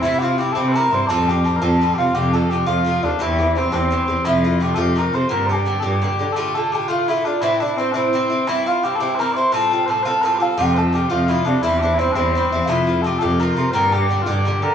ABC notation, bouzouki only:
X:1
M:6/8
L:1/8
Q:3/8=114
K:F
V:1 name="Bouzouki"
[G,,E,CE] [E,CE] [G,,E,CE] [G,,E,CE] [G,,E,CE] [E,CE] | [A,,G,CF] [G,CF] [A,,G,CF] [A,,G,CF] [A,,G,CF] [G,CF] | [C,F,A,F] [F,A,F] [C,F,A,F] [C,F,A,F] [C,F,A,F] [F,A,F] | [G,,E,CG] [E,CG] [G,,E,CG] [G,,E,CG] [G,,E,CG] [E,CG] |
[C,F,A,F] [F,A,F] [C,F,A,F] [C,F,A,F] [C,F,A,F] [F,A,F] | [B,,D,DG] [D,DG] [B,,D,DG] [B,,D,DG] [B,,D,DG] [D,DG] | [A,,D,A,F] [D,A,F] [A,,D,A,F] [A,,D,A,F] [A,,D,A,F] [D,A,F] | [A,,E,CE] [E,CE] [A,,E,CE] [A,,E,CE] [A,,E,CE] [E,CE] |
[G,,E,CE] [E,CE] [G,,E,CE] [G,,E,CE] [G,,E,CE] [E,CE] | [A,,G,CF] [G,CF] [A,,G,CF] [A,,G,CF] [A,,G,CF] [G,CF] | [C,F,A,F] [F,A,F] [C,F,A,F] [C,F,A,F] [C,F,A,F] [F,A,F] | [G,,G,CE] [G,CE] [G,,G,CE] [G,,G,CE] [G,,G,CE] [G,CE] |
[C,F,A,F] [F,A,F] [C,F,A,F] [C,F,A,F] [C,F,A,F] [F,A,F] | [B,,D,DG] [D,DG] [B,,D,DG] [B,,D,DG] [B,,D,DG] [D,DG] |]